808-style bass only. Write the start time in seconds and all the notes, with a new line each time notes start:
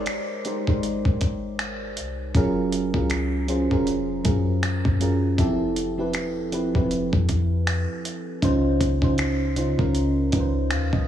0.68 G#1
1.05 G#1
1.97 C2
2.35 F#1
2.94 C#2
3.71 F1
4.25 F#2
4.85 F#2
5.38 F1
6.14 E1
6.44 F1
6.75 F1
7.13 F2
8.42 C#2
8.81 C#2
9.79 C#2
10.33 C#2
10.71 D#2
10.93 C#2